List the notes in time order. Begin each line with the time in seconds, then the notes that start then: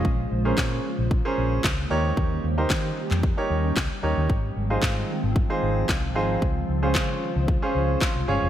Already playing: C#3 G#3 F4 C5
0.05 A#1 A#3, kick
0.31 A#1
0.45 C#4 G#4 A#4 C5
0.58 A#2, kick, snare, clap
0.99 A#1
1.11 kick
1.25 C#4 G#4 A#4 C5
1.38 A#1
1.64 C#2, kick, snare, clap
1.90 D#2 D#3 G3 C#4 D#4 G4 A#4 C#5
2.17 D#2, kick
2.44 D#2
2.58 D#4 G4 A#4 C5
2.70 D#3, kick, snare, clap
3.11 F2, clap
3.23 kick
3.37 D#4 G4 A#4 C#5
3.50 D#2
3.77 C#2, kick, snare, clap
4.03 D#2 D#4 G4 A#4 C#5
4.17 D#2
4.30 G#1 D#3 F3 G#3 C4 F4, kick
4.56 G#1
4.70 D#4 F4 G#4 C5
4.82 G#2, kick, snare, clap
5.24 G#1
5.36 kick
5.50 D#4 F4 G#4 C5
5.62 G#1
5.89 C2, kick, snare, clap
6.15 G#1 D#4 F4 G#4 C5
6.42 C#2 C#3 C5, kick
6.69 C#2
6.82 C#4 F4 G#4 C5
6.95 C#3, kick, snare, clap
7.36 C#2
7.48 kick
7.62 C#4 F4 G#4 C5
7.75 C#2
8.01 C6, kick, snare, clap
8.15 C2
8.28 G1 C#4 F4 G#4 C#5
8.42 F1